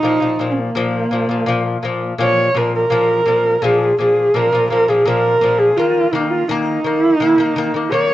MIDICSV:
0, 0, Header, 1, 3, 480
1, 0, Start_track
1, 0, Tempo, 716846
1, 27, Time_signature, 4, 2, 24, 8
1, 5449, End_track
2, 0, Start_track
2, 0, Title_t, "Horsehead fiddle"
2, 0, Program_c, 0, 110
2, 0, Note_on_c, 0, 63, 109
2, 342, Note_on_c, 0, 61, 44
2, 352, Note_off_c, 0, 63, 0
2, 395, Note_on_c, 0, 58, 78
2, 405, Note_off_c, 0, 61, 0
2, 1357, Note_off_c, 0, 58, 0
2, 1477, Note_on_c, 0, 73, 95
2, 1723, Note_on_c, 0, 70, 86
2, 1733, Note_off_c, 0, 73, 0
2, 1837, Note_off_c, 0, 70, 0
2, 1846, Note_on_c, 0, 70, 97
2, 2443, Note_on_c, 0, 68, 89
2, 2453, Note_off_c, 0, 70, 0
2, 2673, Note_off_c, 0, 68, 0
2, 2677, Note_on_c, 0, 68, 82
2, 2916, Note_on_c, 0, 70, 94
2, 2926, Note_off_c, 0, 68, 0
2, 3149, Note_off_c, 0, 70, 0
2, 3153, Note_on_c, 0, 70, 100
2, 3269, Note_on_c, 0, 68, 90
2, 3279, Note_off_c, 0, 70, 0
2, 3388, Note_on_c, 0, 70, 98
2, 3398, Note_off_c, 0, 68, 0
2, 3740, Note_on_c, 0, 68, 91
2, 3750, Note_off_c, 0, 70, 0
2, 3862, Note_on_c, 0, 65, 91
2, 3872, Note_off_c, 0, 68, 0
2, 4104, Note_on_c, 0, 63, 83
2, 4114, Note_off_c, 0, 65, 0
2, 4221, Note_on_c, 0, 65, 95
2, 4231, Note_off_c, 0, 63, 0
2, 4340, Note_on_c, 0, 63, 102
2, 4350, Note_off_c, 0, 65, 0
2, 4682, Note_off_c, 0, 63, 0
2, 4682, Note_on_c, 0, 64, 102
2, 4776, Note_off_c, 0, 64, 0
2, 4776, Note_on_c, 0, 63, 102
2, 4876, Note_off_c, 0, 63, 0
2, 4876, Note_on_c, 0, 64, 102
2, 4963, Note_off_c, 0, 64, 0
2, 4963, Note_on_c, 0, 63, 102
2, 5298, Note_on_c, 0, 73, 98
2, 5308, Note_off_c, 0, 63, 0
2, 5449, Note_off_c, 0, 73, 0
2, 5449, End_track
3, 0, Start_track
3, 0, Title_t, "Lute"
3, 0, Program_c, 1, 24
3, 19, Note_on_c, 1, 46, 71
3, 31, Note_on_c, 1, 53, 86
3, 119, Note_off_c, 1, 46, 0
3, 125, Note_off_c, 1, 53, 0
3, 135, Note_on_c, 1, 46, 56
3, 149, Note_on_c, 1, 53, 64
3, 237, Note_off_c, 1, 46, 0
3, 244, Note_off_c, 1, 53, 0
3, 262, Note_on_c, 1, 46, 66
3, 273, Note_on_c, 1, 53, 76
3, 457, Note_off_c, 1, 46, 0
3, 462, Note_off_c, 1, 53, 0
3, 503, Note_on_c, 1, 46, 90
3, 513, Note_on_c, 1, 53, 98
3, 698, Note_off_c, 1, 46, 0
3, 703, Note_off_c, 1, 53, 0
3, 743, Note_on_c, 1, 46, 63
3, 754, Note_on_c, 1, 53, 67
3, 842, Note_off_c, 1, 46, 0
3, 848, Note_off_c, 1, 53, 0
3, 862, Note_on_c, 1, 46, 57
3, 877, Note_on_c, 1, 53, 69
3, 962, Note_off_c, 1, 46, 0
3, 969, Note_off_c, 1, 53, 0
3, 979, Note_on_c, 1, 46, 93
3, 993, Note_on_c, 1, 53, 96
3, 1176, Note_off_c, 1, 46, 0
3, 1183, Note_off_c, 1, 53, 0
3, 1223, Note_on_c, 1, 46, 75
3, 1237, Note_on_c, 1, 53, 86
3, 1419, Note_off_c, 1, 46, 0
3, 1425, Note_off_c, 1, 53, 0
3, 1463, Note_on_c, 1, 46, 85
3, 1477, Note_on_c, 1, 53, 105
3, 1658, Note_off_c, 1, 46, 0
3, 1665, Note_off_c, 1, 53, 0
3, 1705, Note_on_c, 1, 46, 81
3, 1718, Note_on_c, 1, 53, 82
3, 1900, Note_off_c, 1, 46, 0
3, 1906, Note_off_c, 1, 53, 0
3, 1942, Note_on_c, 1, 46, 86
3, 1955, Note_on_c, 1, 53, 96
3, 2138, Note_off_c, 1, 46, 0
3, 2144, Note_off_c, 1, 53, 0
3, 2180, Note_on_c, 1, 46, 73
3, 2194, Note_on_c, 1, 53, 83
3, 2377, Note_off_c, 1, 46, 0
3, 2384, Note_off_c, 1, 53, 0
3, 2423, Note_on_c, 1, 46, 94
3, 2437, Note_on_c, 1, 53, 107
3, 2619, Note_off_c, 1, 46, 0
3, 2626, Note_off_c, 1, 53, 0
3, 2668, Note_on_c, 1, 46, 65
3, 2682, Note_on_c, 1, 53, 75
3, 2861, Note_off_c, 1, 46, 0
3, 2868, Note_off_c, 1, 53, 0
3, 2907, Note_on_c, 1, 46, 90
3, 2920, Note_on_c, 1, 53, 98
3, 3004, Note_off_c, 1, 46, 0
3, 3011, Note_off_c, 1, 53, 0
3, 3030, Note_on_c, 1, 46, 72
3, 3044, Note_on_c, 1, 53, 81
3, 3126, Note_off_c, 1, 46, 0
3, 3133, Note_off_c, 1, 53, 0
3, 3150, Note_on_c, 1, 46, 70
3, 3163, Note_on_c, 1, 53, 80
3, 3245, Note_off_c, 1, 46, 0
3, 3252, Note_off_c, 1, 53, 0
3, 3270, Note_on_c, 1, 46, 65
3, 3281, Note_on_c, 1, 53, 66
3, 3365, Note_off_c, 1, 46, 0
3, 3371, Note_off_c, 1, 53, 0
3, 3385, Note_on_c, 1, 46, 91
3, 3398, Note_on_c, 1, 53, 100
3, 3579, Note_off_c, 1, 46, 0
3, 3586, Note_off_c, 1, 53, 0
3, 3624, Note_on_c, 1, 46, 82
3, 3639, Note_on_c, 1, 53, 83
3, 3818, Note_off_c, 1, 46, 0
3, 3826, Note_off_c, 1, 53, 0
3, 3867, Note_on_c, 1, 51, 84
3, 3880, Note_on_c, 1, 58, 88
3, 4059, Note_off_c, 1, 51, 0
3, 4066, Note_off_c, 1, 58, 0
3, 4103, Note_on_c, 1, 51, 83
3, 4117, Note_on_c, 1, 58, 92
3, 4297, Note_off_c, 1, 51, 0
3, 4304, Note_off_c, 1, 58, 0
3, 4347, Note_on_c, 1, 51, 98
3, 4359, Note_on_c, 1, 58, 111
3, 4539, Note_off_c, 1, 51, 0
3, 4545, Note_off_c, 1, 58, 0
3, 4582, Note_on_c, 1, 51, 70
3, 4596, Note_on_c, 1, 58, 79
3, 4776, Note_off_c, 1, 51, 0
3, 4783, Note_off_c, 1, 58, 0
3, 4822, Note_on_c, 1, 51, 96
3, 4834, Note_on_c, 1, 58, 95
3, 4920, Note_off_c, 1, 51, 0
3, 4926, Note_off_c, 1, 58, 0
3, 4942, Note_on_c, 1, 51, 79
3, 4955, Note_on_c, 1, 58, 91
3, 5040, Note_off_c, 1, 51, 0
3, 5046, Note_off_c, 1, 58, 0
3, 5062, Note_on_c, 1, 51, 86
3, 5076, Note_on_c, 1, 58, 106
3, 5160, Note_off_c, 1, 51, 0
3, 5167, Note_off_c, 1, 58, 0
3, 5184, Note_on_c, 1, 51, 64
3, 5197, Note_on_c, 1, 58, 75
3, 5280, Note_off_c, 1, 51, 0
3, 5287, Note_off_c, 1, 58, 0
3, 5302, Note_on_c, 1, 51, 88
3, 5315, Note_on_c, 1, 58, 91
3, 5449, Note_off_c, 1, 51, 0
3, 5449, Note_off_c, 1, 58, 0
3, 5449, End_track
0, 0, End_of_file